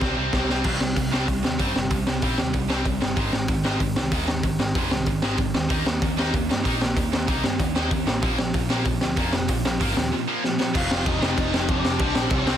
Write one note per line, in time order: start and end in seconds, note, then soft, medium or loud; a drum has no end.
0.01 0.12 C2 medium
0.01 0.18 C3 medium
0.01 0.17 G3 medium
0.01 0.16 C4 loud
0.01 kick loud
0.01 snare medium
0.17 0.28 C2 medium
0.17 0.32 C3 medium
0.17 0.33 G3 medium
0.17 0.33 C4 medium
0.33 0.44 C2 medium
0.33 0.49 C3 medium
0.33 0.48 G3 medium
0.33 0.47 C4 medium
0.33 kick loud
0.33 snare medium
0.48 0.64 C2 medium
0.48 0.63 C3 medium
0.48 0.64 G3 medium
0.48 0.64 C4 medium
0.48 snare medium
0.64 0.80 C2 medium
0.64 0.79 C3 medium
0.64 0.79 G3 medium
0.64 0.80 C4 medium
0.64 kick loud
0.64 crash loud
0.80 0.96 C2 medium
0.80 0.95 C3 medium
0.80 0.95 G3 medium
0.80 snare loud
0.96 1.27 C2 medium
0.96 1.11 C3 medium
0.96 1.11 G3 medium
0.96 kick loud
0.96 open hi-hat medium
1.12 1.26 C3 medium
1.12 1.26 G3 medium
1.12 1.28 C4 medium
1.12 snare medium
1.27 1.43 C2 medium
1.27 1.42 C3 medium
1.27 1.42 G3 medium
1.27 kick loud
1.27 open hi-hat medium
1.44 1.59 D#2 medium
1.44 1.58 C3 medium
1.44 1.58 G3 medium
1.44 snare loud
1.59 1.74 G2 medium
1.59 1.74 C3 medium
1.59 1.75 G3 medium
1.59 1.75 C4 medium
1.59 kick loud
1.59 open hi-hat medium
1.74 1.90 G1 loud
1.74 1.90 C3 medium
1.74 1.90 G3 medium
1.74 snare loud
1.90 2.05 C2 medium
1.90 2.05 C3 medium
1.90 2.06 G3 medium
1.90 kick loud
1.90 open hi-hat medium
2.06 2.22 C2 medium
2.06 2.21 C3 medium
2.06 2.21 G3 medium
2.06 snare loud
2.22 2.37 A#1 medium
2.22 2.37 C3 loud
2.22 2.37 G3 medium
2.22 2.38 C4 medium
2.22 kick loud
2.22 open hi-hat medium
2.38 2.54 D#2 medium
2.38 2.52 C3 medium
2.38 2.53 G3 medium
2.38 snare loud
2.53 2.69 C2 medium
2.53 2.68 C3 medium
2.53 2.68 G3 medium
2.53 kick loud
2.53 open hi-hat soft
2.69 2.85 C2 medium
2.69 2.85 C3 medium
2.69 2.85 G3 loud
2.69 2.86 C4 medium
2.69 snare loud
2.85 3.01 C2 medium
2.85 2.99 C3 medium
2.85 3.00 G3 medium
2.85 kick loud
2.85 open hi-hat soft
3.01 3.16 G1 loud
3.01 3.15 C3 medium
3.01 3.16 G3 medium
3.01 snare loud
3.17 3.32 G#1 medium
3.17 3.32 G#2 medium
3.17 3.32 D#3 medium
3.17 3.33 G#3 loud
3.17 kick loud
3.17 open hi-hat medium
3.33 3.48 G#1 medium
3.33 3.47 G#2 medium
3.33 3.47 D#3 medium
3.33 snare loud
3.48 3.79 G#1 medium
3.48 3.62 G#2 medium
3.48 3.63 D#3 medium
3.48 kick loud
3.48 open hi-hat medium
3.64 3.79 G#2 medium
3.64 3.80 D#3 medium
3.64 3.80 G#3 loud
3.64 snare loud
3.80 3.95 G#1 medium
3.80 3.95 G#2 medium
3.80 3.95 D#3 medium
3.80 kick loud
3.80 open hi-hat medium
3.96 4.12 C2 medium
3.96 4.11 G#2 medium
3.96 4.11 D#3 medium
3.96 snare loud
4.11 4.27 D#2 medium
4.11 4.26 G#2 medium
4.11 4.26 D#3 medium
4.11 4.28 G#3 medium
4.11 kick loud
4.11 open hi-hat medium
4.27 4.43 D#2 medium
4.27 4.42 G#2 medium
4.27 4.42 D#3 medium
4.27 snare loud
4.43 4.59 G#1 medium
4.43 4.58 G#2 medium
4.43 4.58 D#3 medium
4.43 kick loud
4.43 open hi-hat medium
4.59 4.75 G#1 medium
4.59 4.74 G#2 medium
4.59 4.74 D#3 medium
4.59 snare loud
4.75 4.91 F1 medium
4.75 4.90 G#2 medium
4.75 4.90 D#3 loud
4.75 4.91 G#3 loud
4.75 kick loud
4.75 open hi-hat medium
4.91 5.06 C2 medium
4.91 5.05 G#2 medium
4.91 5.06 D#3 medium
4.91 snare loud
5.06 5.22 G#1 medium
5.06 5.21 G#2 medium
5.06 5.22 D#3 medium
5.06 kick medium
5.06 open hi-hat medium
5.22 5.38 G#1 medium
5.22 5.38 G#2 loud
5.22 5.38 D#3 loud
5.22 5.38 G#3 medium
5.22 snare loud
5.38 5.54 G#1 medium
5.38 5.53 G#2 medium
5.38 5.53 D#3 medium
5.38 kick loud
5.38 open hi-hat soft
5.54 5.70 D#2 medium
5.54 5.69 G#2 medium
5.54 5.69 D#3 medium
5.54 snare loud
5.70 5.86 D#2 medium
5.70 5.85 D#3 medium
5.70 5.85 A#3 medium
5.70 5.86 D#4 medium
5.70 kick loud
5.70 open hi-hat medium
5.86 6.01 D#2 medium
5.86 6.00 D#3 medium
5.86 6.01 A#3 medium
5.86 snare loud
6.02 6.32 D#2 medium
6.02 6.16 D#3 medium
6.02 6.17 A#3 medium
6.02 kick loud
6.02 open hi-hat medium
6.18 6.33 D#3 medium
6.18 6.33 A#3 medium
6.18 6.33 D#4 loud
6.18 snare loud
6.34 6.49 D#2 medium
6.34 6.48 D#3 medium
6.34 6.48 A#3 medium
6.34 kick loud
6.34 open hi-hat medium
6.50 6.65 G2 medium
6.50 6.64 D#3 medium
6.50 6.64 A#3 medium
6.50 snare loud
6.65 6.80 A#2 medium
6.65 6.80 D#3 medium
6.65 6.80 A#3 medium
6.65 6.81 D#4 medium
6.65 kick loud
6.65 open hi-hat medium
6.81 6.96 A#1 medium
6.81 6.95 D#3 medium
6.81 6.96 A#3 medium
6.81 snare loud
6.97 7.12 D#2 loud
6.97 7.11 D#3 medium
6.97 7.11 A#3 medium
6.97 kick loud
6.97 open hi-hat medium
7.13 7.27 D#2 medium
7.13 7.27 D#3 medium
7.13 7.27 A#3 medium
7.13 snare loud
7.28 7.43 C2 medium
7.28 7.43 D#3 medium
7.28 7.44 A#3 medium
7.28 7.44 D#4 medium
7.28 kick loud
7.28 open hi-hat medium
7.44 7.59 G2 medium
7.44 7.58 D#3 medium
7.44 7.59 A#3 medium
7.44 snare loud
7.59 7.75 D#2 medium
7.59 7.74 D#3 medium
7.59 7.75 A#3 medium
7.59 kick loud
7.59 open hi-hat medium
7.76 7.91 D#2 medium
7.76 7.91 D#3 medium
7.76 7.91 A#3 loud
7.76 7.91 D#4 loud
7.76 snare loud
7.91 8.06 D#2 medium
7.91 8.06 D#3 medium
7.91 8.06 A#3 medium
7.91 kick loud
7.91 open hi-hat medium
8.06 8.22 A1 medium
8.06 8.21 D#3 medium
8.06 8.21 A#3 medium
8.06 snare loud
8.22 8.38 A#1 medium
8.22 8.38 A#2 medium
8.22 8.38 F3 loud
8.22 8.38 A#3 medium
8.22 kick loud
8.22 open hi-hat medium
8.38 8.54 A#1 medium
8.38 8.53 A#2 medium
8.38 8.53 F3 medium
8.38 snare loud
8.54 8.85 A#1 medium
8.54 8.69 A#2 medium
8.54 8.69 F3 medium
8.54 kick loud
8.54 open hi-hat medium
8.70 8.85 A#2 medium
8.70 8.85 F3 medium
8.70 8.86 A#3 medium
8.70 snare loud
8.85 9.00 A#1 medium
8.85 9.00 A#2 medium
8.85 9.00 F3 medium
8.85 kick loud
8.85 open hi-hat soft
9.01 9.16 D2 medium
9.01 9.16 A#2 medium
9.01 9.16 F3 medium
9.01 snare loud
9.17 9.32 F2 medium
9.17 9.32 A#2 medium
9.17 9.33 F3 medium
9.17 9.33 A#3 medium
9.17 kick loud
9.17 open hi-hat medium
9.33 9.48 F1 medium
9.33 9.47 A#2 medium
9.33 9.48 F3 medium
9.33 snare loud
9.48 9.64 A#1 medium
9.48 9.63 A#2 medium
9.48 9.63 F3 medium
9.48 kick loud
9.48 open hi-hat medium
9.64 9.79 A#1 medium
9.64 9.79 A#2 medium
9.64 9.79 F3 medium
9.64 snare loud
9.81 9.95 G#1 medium
9.81 9.95 A#2 medium
9.81 9.96 F3 medium
9.81 9.96 A#3 loud
9.81 kick loud
9.81 open hi-hat medium
9.96 10.11 D#2 medium
9.96 10.11 A#2 medium
9.96 10.11 F3 medium
9.96 snare loud
10.13 10.26 A#2 medium
10.13 10.27 F3 medium
10.28 10.42 A#2 medium
10.28 10.43 F3 loud
10.28 10.43 A#3 loud
10.43 10.57 A#2 medium
10.43 10.58 F3 medium
10.43 snare medium
10.59 10.73 A#2 medium
10.59 10.73 F3 medium
10.59 snare medium
10.74 10.90 F1 loud
10.74 11.21 F2 medium
10.74 11.21 C3 loud
10.74 11.19 F3 loud
10.74 11.05 F4 medium
10.74 11.05 F5 medium
10.74 kick loud
10.74 crash loud
10.74 crash medium
10.91 11.05 F1 medium
10.91 snare loud
11.06 11.21 F1 loud
11.06 11.65 D#4 medium
11.06 11.69 D#5 medium
11.06 kick loud
11.06 crash medium
11.21 11.37 F1 medium
11.21 12.00 F2 medium
11.21 11.98 C3 medium
11.21 11.99 F3 medium
11.21 snare loud
11.38 11.53 F1 loud
11.38 kick loud
11.38 crash medium
11.54 11.69 F1 medium
11.54 snare loud
11.69 11.84 F1 loud
11.69 12.28 D4 medium
11.69 12.34 D5 loud
11.69 kick loud
11.69 crash medium
11.84 11.99 F1 loud
11.84 snare loud
11.99 12.15 C2 loud
11.99 12.46 C3 medium
11.99 12.46 G3 loud
11.99 12.45 C4 loud
11.99 kick loud
11.99 crash medium
12.15 12.30 A#1 medium
12.15 snare loud
12.30 12.45 C2 loud
12.30 12.57 C4 medium
12.30 12.57 C5 medium
12.30 kick loud
12.30 crash medium
12.46 12.57 C2 medium
12.46 12.57 C3 medium
12.46 12.57 G3 medium
12.46 12.57 C4 medium
12.46 snare loud